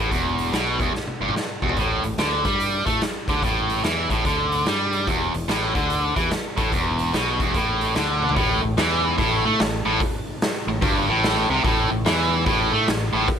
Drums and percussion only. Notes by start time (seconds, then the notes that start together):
0.11 kick, closed hi-hat
0.38 closed hi-hat
0.53 snare, closed hi-hat
0.80 kick, closed hi-hat
0.95 snare
1.07 high tom
1.28 mid tom
1.36 snare
1.62 kick
1.69 floor tom
1.77 kick, closed hi-hat
2.04 closed hi-hat
2.18 snare, closed hi-hat
2.45 kick, closed hi-hat
2.60 closed hi-hat
2.86 kick, closed hi-hat
3.01 snare, closed hi-hat
3.28 kick, closed hi-hat
3.43 kick, closed hi-hat
3.70 closed hi-hat
3.84 snare, closed hi-hat
4.10 kick, closed hi-hat
4.25 kick, closed hi-hat
4.52 closed hi-hat
4.66 snare, closed hi-hat
4.92 closed hi-hat
5.07 kick, closed hi-hat
5.34 closed hi-hat
5.49 snare, closed hi-hat
5.75 kick, closed hi-hat
5.90 closed hi-hat
6.16 kick, closed hi-hat
6.31 snare, closed hi-hat
6.57 kick, closed hi-hat
6.72 kick, closed hi-hat
6.99 closed hi-hat
7.14 snare, closed hi-hat
7.40 kick, closed hi-hat
7.54 kick, closed hi-hat
7.81 closed hi-hat
7.95 snare, closed hi-hat
8.22 high tom
8.29 floor tom
8.36 kick, open hi-hat
8.77 snare, open hi-hat
9.18 kick, open hi-hat
9.59 snare, open hi-hat
10.00 kick, open hi-hat
10.42 snare, open hi-hat
10.82 kick, open hi-hat
11.24 snare, open hi-hat
11.65 kick, open hi-hat
12.05 snare, open hi-hat
12.46 kick, open hi-hat
12.88 snare, open hi-hat
13.28 kick, open hi-hat